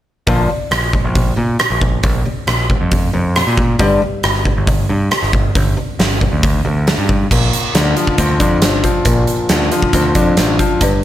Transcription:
0.27 A#1 A#2 D3 F3, kick, open hi-hat
0.49 A#2 D3
0.71 A#1 A#2 D3, cross-stick, open hi-hat
0.93 A#2 D3, kick
1.04 A#1
1.15 A#2 D3, kick, open hi-hat
1.36 A#2 D3
1.59 A#2 D3, cross-stick, open hi-hat
1.70 A#1
1.81 A#2 D3, kick
2.03 A#1 A#2 D3, kick, open hi-hat
2.25 A#2 D3
2.47 A#1 A#2 D3, cross-stick, open hi-hat
2.70 A#2 D3, kick
2.81 F2
2.91 A#2 D3, kick, open hi-hat
3.13 F2 A#2 D3
3.35 A#2 D3, cross-stick, open hi-hat
3.47 A#2
3.57 A#2 D3, kick
3.79 G1 G2 D3 G3, kick, open hi-hat
4.02 G2 D3
4.23 G1 G2 D3, cross-stick, open hi-hat
4.45 G2 D3, kick
4.57 G1
4.67 G2 D3, kick, open hi-hat
4.89 G2 D3
5.11 G2 D3, cross-stick, open hi-hat
5.23 G1
5.33 G2 D3, kick
5.55 G1 G2 D3, kick, open hi-hat
5.77 G2 D3
5.99 G1 G2 D3, snare, open hi-hat
6.21 G2 D3, kick
6.32 D2
6.43 G2 D3, kick, open hi-hat
6.65 D2 G2 D3
6.87 G2 D3, snare, open hi-hat
6.98 G2
7.09 G2 D3, kick
7.31 A#1 A#2, kick, crash
7.53 closed hi-hat
7.75 D2 D3, snare, closed hi-hat
7.96 F3, closed hi-hat
8.07 kick
8.18 D2 C4, kick, closed hi-hat
8.40 F2 D4, kick, closed hi-hat
8.62 G1 C4, snare, closed hi-hat
8.84 F3, kick, closed hi-hat
9.05 A#1 A#2, kick, closed hi-hat
9.27 closed hi-hat
9.49 D2 D3, snare, closed hi-hat
9.61 snare
9.71 F3, closed hi-hat
9.82 kick
9.93 D2 C4, kick, closed hi-hat
10.15 F2 D4, kick, closed hi-hat
10.37 A1 C4, snare, closed hi-hat
10.59 F3, kick, closed hi-hat
10.81 G1 G2, kick, closed hi-hat

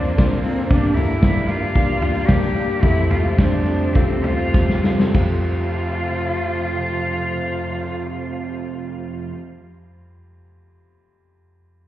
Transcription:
Already playing: F1 F2 F3 A#3 C4 D4 F4 G4 A#4 C5 D5
0.05 open hi-hat
0.17 A#3 C4 D4 F4 C5, kick, snare, hi-hat pedal, open hi-hat
0.31 F2 D3 F3 A#3 C4 F4, snare, hi-hat pedal
0.42 A#3 C4 D4 F4 A4, hi-hat pedal, open hi-hat
0.68 G1 G2 G3 A#3 D4 G4 D5, kick, hi-hat pedal, open hi-hat
0.73 G4
0.94 G2 D3 G3 A#3 D4 E4 A4, floor tom, hi-hat pedal, open hi-hat
0.98 A#3 D4 G4
1.21 A#3 D4 G4, kick, snare, hi-hat pedal, open hi-hat
1.35 G3 A#3 D4 G4
1.47 A#3 D4 F4 G4, hi-hat pedal, open hi-hat
1.75 G3 A#3 D4 G4, kick, hi-hat pedal, open hi-hat
2.01 G3 A#3 D4 G4, floor tom, hi-hat pedal, open hi-hat
2.15 open hi-hat
2.27 A#3 D4 G4, kick, snare, hi-hat pedal, open hi-hat
2.41 G2 D3 G3 A#3 D4 G4, snare, hi-hat pedal, open hi-hat
2.55 A#3 D4 G4, hi-hat pedal, open hi-hat
2.69 hi-hat pedal
2.82 F1 F2 F3 G3 A3 C4 E4 F4 G4 A4 C5, kick, hi-hat pedal, open hi-hat
3.10 F2 C3 F3 G3 A3 C4 F4 G4, floor tom, hi-hat pedal, open hi-hat
3.38 G3 A3 C4 D4 F4 C5, kick, snare, hi-hat pedal, open hi-hat
3.51 F3 A3 C4 G4
3.66 G3 A3 C4 F4 A4, hi-hat pedal, open hi-hat
3.94 F3 G3 A3 C4 F4 G4 A4, kick, hi-hat pedal, open hi-hat
4.22 F3 G3 A3 C4 F4 G4 C5, floor tom, hi-hat pedal, open hi-hat
4.54 G3 A3 C4 F4 G4, kick, snare
4.68 F2 C3 F3 A3 C4 G4, snare
4.84 G3 A3 C4 F4 A4, snare
4.99 snare
5.11 F2 C3 F3 G3 C4 F4 G4 A4 C5, kick, ride bell
5.16 A3 C4 F4 G4 A4

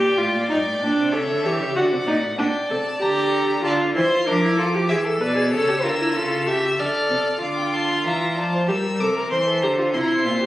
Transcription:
Already playing: A#2 G4 D5 G5
0.17 A2 F4
0.35 A#2
0.49 G2 D#4 G5
0.66 A2
0.81 A#2 D4
0.98 C3
1.13 C#3 A4 C#5 E5
1.30 D3
1.45 E3 G4 C#5
1.61 C#3
1.75 D3 F#4 D5 F#5
1.92 C3
2.07 A#2 D#4
2.23 A2
2.38 A#2 D4 D5 G5
2.69 C3 A4 A5
3.01 D3 G4 A#5
3.64 D3 F4 D5 A5
3.96 E3 E4 C5 C6
4.11 F4
4.27 F3 D4 A#4 D6
4.43 E4
4.57 F3 F4 A4
4.75 G4
4.88 E3 G#4 E5 E6
5.05 A4
5.21 B2 B4 D5
5.36 G#4
5.52 C#3 A4 C#5
5.69 G4
5.83 D3 F4 A#4
5.99 E4
6.15 C#3 F4 A4
6.47 C#3 G4 E5
6.78 D3 A4 D5 F6
7.10 C3
7.41 D3 F4 F5 D6
7.58 G5
7.74 A5 C6
7.91 F5
8.05 E3 E5 A#5
8.37 F3 D5 A5
8.54 C5
8.68 G3 G4 A#4 E6
9.00 C3 A4 D6
9.15 A#4
9.31 E3 C5 C6
9.47 A4
9.63 D3 G4 A#5
9.78 F4
9.94 C3 E4 C5 C6
10.01 A#5
10.08 C6
10.25 A#2 F4
10.42 G4

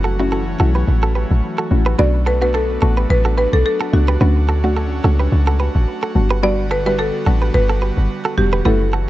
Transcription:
Already playing: F#1 E3 F#3 A3 C#4 F#4
0.04 F#4 A4
0.19 A3 C#4 D4 E4 F#4
0.32 F#4 A4
0.59 B1 A3 C#4 E4 F#4 A4
0.75 G4 B4
0.88 A1
1.03 F#4 A4
1.15 G4 B4
1.31 A1
1.58 F#4 A4
1.70 A1 A3 C#4 E4 F#4
1.86 G4 B4
1.98 B1 A3 B3 D4 F#4 B4 D5
2.26 F#4 A4 B4
2.41 A3 B3 D4 F#4 B4
2.54 F#4 A4
2.82 A1 A3 B3 D4 F#4 A4
2.97 G4 B4
3.10 A1 B4
3.25 F#4 A4
3.38 G4 B4
3.53 B1 A4
3.66 A4
3.81 F#4 A4
3.93 C#2 A3 B3 D4 F#4
4.08 G4 B4
4.20 D2 A3 C#4 D4 F#4 B4
4.49 F#4 A4
4.64 A3 C#4 D4 F#4
4.76 F#4 A4
5.04 C#2 A3 C#4 D4 F#4 A4
5.20 G4 B4
5.32 C#2
5.47 F#4 A4
5.60 G4 B4
5.75 A1
6.03 F#4 A4
6.15 G1 D3 G3 B3 D4 F#4
6.31 G4 B4
6.43 G3 B3 D4 F#4 G4 B4 D5
6.71 F#4 A4 B4
6.86 G3 B3 D4 E4 F#4 G4 B4
6.99 F#4 A4
7.26 A1 G3 B3 D4 F#4 A4
7.42 G4 B4
7.54 G1 B4
7.70 F#4 A4
7.82 G4 B4
7.97 G1
8.25 F#4 A4
8.37 E1 G3 B3 D4 F#4 G4
8.53 G4 B4
8.65 F#1 E3 F#3 A3 C#4 E4 F#4 A4 B4
8.93 F#4 A4

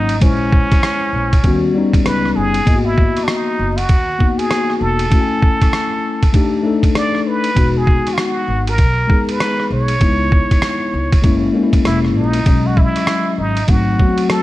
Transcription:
Already playing: G#1 F#3 A#3 C#4 D#4
0.09 ride
0.20 A#1 G#3 C#4 C5, kick, ride
0.24 E4
0.52 kick
0.72 kick, cross-stick, ride
0.83 cross-stick, hi-hat pedal, ride
1.13 A#1
1.33 kick, ride
1.43 D#2 G3 B3 C#4 F#4, kick, ride
1.74 G3 B3 C#4 D#4
1.93 kick, ride
2.05 C#2 B4, cross-stick, hi-hat pedal, ride
2.25 cross-stick
2.36 F#1 G#4
2.54 ride
2.65 G#1 A#3 B3 E4 D#5, kick, ride
2.76 F#4
2.86 E4
2.98 kick
3.17 cross-stick, ride
3.24 D4 D#4, cross-stick
3.28 hi-hat pedal, ride
3.59 F#1
3.77 F#4, ride
3.89 D#2, kick, ride
4.19 A#3 B3 D#4 F#4, kick
4.38 G#4, ride
4.51 cross-stick, hi-hat pedal, ride
4.70 cross-stick
4.80 E1 A4
4.99 ride
5.10 A3 C#4 E4 F#4, kick, ride
5.21 G#5
5.42 kick
5.61 kick, cross-stick, ride
5.73 cross-stick, hi-hat pedal, ride
6.23 kick, ride
6.32 A3 D4 D#4 G4, kick, ride
6.63 A3 D4 D#4 A4
6.83 kick, ride
6.95 D5, cross-stick, hi-hat pedal, ride
7.15 cross-stick
7.27 B4
7.44 ride
7.55 E1 G#3 B3 D#4 F#4, kick, ride
7.78 G#4
7.87 kick
8.07 cross-stick, ride
8.13 F4
8.18 F#4, cross-stick, hi-hat pedal, ride
8.48 G#1
8.67 A#4, ride
8.78 B1, kick, ride
9.07 G#3 B3 D#4 G#4, kick
9.29 B4, ride
9.40 cross-stick, hi-hat pedal, ride
9.60 cross-stick
9.70 B1 C#5
9.88 ride
10.00 C#2 G#3 B3 D#4 E4, kick, ride
10.32 kick
10.51 kick, cross-stick, ride
10.62 cross-stick, hi-hat pedal, ride
10.93 C#2
11.12 kick, ride
11.22 F#1 G#3 A#3 C#4 E4, kick, ride
11.53 G#3 A#3 C#4
11.57 D#4
11.63 E4
11.73 kick, ride
11.85 E1 E4, cross-stick, hi-hat pedal, ride
12.05 cross-stick
12.16 A#1 D#4
12.33 ride
12.46 B1 F#3 G#3 C#4 D#5, kick, ride
12.66 F#4
12.77 E4, kick
12.96 cross-stick, ride
13.07 cross-stick, hi-hat pedal, ride
13.38 G#1 D#4
13.57 ride
13.68 G#1 F#3 A3 C4 D#4 F#4, kick, ride
13.98 F#3 A3 B3 F#4, kick
14.07 C4
14.18 ride
14.30 A4, cross-stick, hi-hat pedal, ride

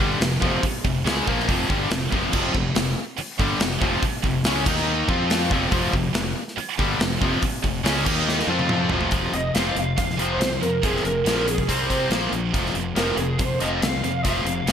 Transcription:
0.00 G1 G2 D3 G3
0.20 F1 F2 C3, snare, open hi-hat
0.42 F1 F2 C3 F3, kick
0.63 muted overdriven electric guitar stroke, muted distorted electric guitar stroke, kick, open hi-hat
0.84 F1 F2 C3, kick
1.05 C#2 C#3 G#3 C#4, snare, open hi-hat
1.26 A#1 A#2 F3 A#3, kick
1.40 snare
1.48 F1 F2 C3 F3, kick, open hi-hat
1.69 G1 G2 D3 G3, kick
1.91 F1 F2 C3, snare, open hi-hat
2.12 F1 F2 C3 F3, kick
2.33 F1 F2 C3 F3, kick, crash
2.54 F1 F2 C3, kick
2.75 F1 F2 C3, snare, open hi-hat
3.18 muted fingered electric bass stroke, muted overdriven electric guitar stroke, muted distorted electric guitar stroke, open hi-hat
3.39 G1 G2 D3 G3, kick
3.59 F1 F2 C3, snare, open hi-hat
3.81 F1 F2 C3 F3, kick
4.02 muted fingered electric bass stroke, muted overdriven electric guitar stroke, muted distorted electric guitar stroke, kick, open hi-hat
4.23 F1 F2 C3, kick
4.43 C#2 C#3 G#3, snare, open hi-hat
4.47 C#4
4.66 D#2 D#3 A#3 D#4, kick, crash
4.78 snare
5.07 F2 F3 C4 F4, kick
5.30 snare, open hi-hat
5.50 F1 F2 C3 F3, kick
5.71 F1 F2 C3 F3, kick, open hi-hat
5.93 F1 F2 C3, kick
6.13 F1 F2 C3, snare, open hi-hat
6.48 snare
6.57 muted fingered electric bass stroke, muted distorted electric guitar stroke, muted overdriven electric guitar stroke, open hi-hat
6.78 G1 G2 D3 G3, kick
6.99 F1 F2 C3, snare, open hi-hat
7.21 F1 F2 C3 F3, kick
7.42 muted overdriven electric guitar stroke, muted distorted electric guitar stroke, kick, open hi-hat
7.63 F1 F2 C3, kick
7.84 C#2 C#3 G#3 C#4, snare, open hi-hat
8.06 D#2 D#3 A#3 D#4, kick, crash
8.29 snare
8.39 snare
8.47 F2 F3 C4 F4
8.59 high tom
8.69 mid tom
8.90 F1 F2 C3 F3, floor tom
9.01 floor tom
9.11 F1 F2 C3 F3, kick, closed hi-hat
9.33 F1 F2 C3 D#5, closed hi-hat
9.54 F1 F2 C3 F3 F5, snare, closed hi-hat
9.75 F1 F2 C3 F5, closed hi-hat
9.97 F2 C3 F5, kick, closed hi-hat
10.10 snare
10.17 F1 F2 C3 F3 C5, closed hi-hat
10.38 C2 C5, closed hi-hat
10.42 F2 C3, snare
10.60 F2 C3 A#4, closed hi-hat
10.82 F1 F2 C3 F3 G#4, kick, closed hi-hat
10.96 snare
11.04 F1 F2 C3 A#4, closed hi-hat
11.24 A#1 F2 C3, snare, closed hi-hat
11.28 F3
11.48 F2 C3 G#4, closed hi-hat
11.58 kick
11.68 C2 C3 G3 C4 C5, kick, closed hi-hat
11.90 C3 G3 C4, kick, closed hi-hat
12.10 A#1 A#2 F3 A#3, snare, closed hi-hat
12.32 A#1 A#2 F3, closed hi-hat
12.53 F1 F2 C3 F3, kick, closed hi-hat
12.66 snare
12.74 F1 F2 C3, closed hi-hat
12.95 F1 F2 C3 F3 A#4, snare, closed hi-hat
13.17 F1 F2 C3 G#4, closed hi-hat
13.39 F2 C3 C5, kick, closed hi-hat
13.60 F1 F2 C3 F3 D#5, closed hi-hat
13.80 C2 F2 C3 F5, snare, closed hi-hat
14.03 F2 C3, closed hi-hat
14.24 F1 F2 C3 F3 F5, kick, closed hi-hat
14.45 F1 F2 C3, closed hi-hat
14.66 F1 F2 C3 F3, snare, closed hi-hat

